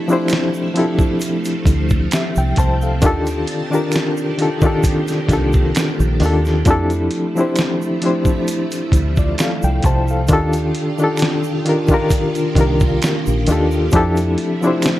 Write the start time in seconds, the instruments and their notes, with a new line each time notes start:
Already playing: reed electric piano F3 C4 D4 E4 G4 A4 D#5, string machine F3 A3 E4
0.08 reed electric piano F3 C4 D4 E4, shaker
0.12 reed electric piano G4 C5
0.28 finger snap, closed hi-hat, shaker
0.33 snare
0.54 shaker
0.74 reed electric piano F3 C4 D4 E4, closed hi-hat
0.79 reed electric piano G4 A4
0.99 kick, shaker
1.20 string machine C4, closed hi-hat, shaker
1.45 closed hi-hat, shaker
1.65 fingered electric bass D2, kick, closed hi-hat, shaker
1.89 kick, shaker
2.11 reed electric piano G4 E5, finger snap, snare, closed hi-hat, shaker
2.36 fingered electric bass C2, reed electric piano G5, shaker
2.56 fingered electric bass C2, reed electric piano C5 A5, kick, closed hi-hat, shaker
2.81 reed electric piano A4 F5, shaker
3.02 fingered electric bass D#2, reed electric piano D#3 D4 F4 G4, string machine D#3 D4 G4 A5, kick, closed hi-hat, shaker
3.06 reed electric piano A4
3.26 closed hi-hat, shaker
3.47 closed hi-hat
3.70 reed electric piano D#3 D4 F4 G4, shaker
3.75 reed electric piano A#4
3.92 finger snap, snare, closed hi-hat, shaker
4.17 shaker
4.38 reed electric piano D#3 D4 F4 G4, closed hi-hat
4.42 reed electric piano A4
4.61 reed electric piano D#3 D4 F4 G4, kick, shaker
4.66 reed electric piano A4
4.82 string machine A#3, kick, closed hi-hat, shaker
5.08 snare, closed hi-hat, shaker
5.28 fingered electric bass C2, reed electric piano D#3 D4 F4 G4, kick, snare, closed hi-hat, shaker
5.33 reed electric piano A4
5.53 kick, shaker
5.75 finger snap, snare, closed hi-hat, shaker
6.00 fingered electric bass A#1, shaker
6.20 fingered electric bass D#2, reed electric piano D#3 D4 F4, open hi-hat, shaker
6.24 reed electric piano G4 A4
6.45 snare, shaker
6.65 fingered electric bass F2, reed electric piano F3 C4 D4 E4, string machine F3 A3 E4, kick, closed hi-hat, shaker
6.70 reed electric piano G4 A4
6.90 closed hi-hat, shaker
7.11 closed hi-hat
7.35 reed electric piano F3 C4 D4 E4, shaker
7.39 reed electric piano G4 C5
7.56 finger snap, snare, closed hi-hat, shaker
7.82 shaker
8.02 reed electric piano F3 C4 D4 E4 G4, closed hi-hat
8.06 reed electric piano C5
8.25 kick, shaker
8.48 closed hi-hat, shaker
8.72 closed hi-hat, shaker
8.92 fingered electric bass D2, kick, closed hi-hat, shaker
9.16 reed electric piano F4 D5, kick, shaker
9.38 reed electric piano A4 F5, finger snap, snare, closed hi-hat, shaker
9.63 fingered electric bass C2, reed electric piano G5, shaker
9.83 fingered electric bass C2, reed electric piano C5 A5, kick, closed hi-hat, shaker
10.08 reed electric piano A4 F5, shaker
10.28 fingered electric bass D#2, reed electric piano D#3 D4 F4, string machine D#3 D4 F4 G4 A4, kick, closed hi-hat, shaker
10.32 reed electric piano G4 A4
10.53 closed hi-hat, shaker
10.75 closed hi-hat
10.98 reed electric piano D#3 D4 F4 G4, shaker
11.04 reed electric piano A4
11.17 finger snap, closed hi-hat, shaker
11.22 snare
11.44 shaker
11.65 reed electric piano D#3 D4 F4 G4, closed hi-hat
11.69 reed electric piano A#4
11.88 reed electric piano D#3 D4 F4, kick, shaker
11.93 reed electric piano G4 A#4
12.10 string machine A#3, kick, closed hi-hat, shaker
12.35 closed hi-hat, shaker
12.55 fingered electric bass C2, reed electric piano D#3 D4 F4 G4, kick, closed hi-hat, shaker
12.61 reed electric piano A#4
12.80 kick, shaker
13.02 finger snap, snare, closed hi-hat, shaker
13.26 fingered electric bass A#1, shaker
13.47 fingered electric bass D#2, reed electric piano D#3 D4 F4, closed hi-hat, shaker
13.51 reed electric piano G4 A4
13.71 shaker
13.91 fingered electric bass F2, reed electric piano F3 C4 D4 E4, string machine F3 A3 E4, kick, closed hi-hat, shaker
13.95 reed electric piano G4 A4
14.16 closed hi-hat, shaker
14.38 closed hi-hat
14.62 reed electric piano F3 C4 D4 E4, shaker
14.66 reed electric piano G4 C5
14.82 finger snap, snare, closed hi-hat, shaker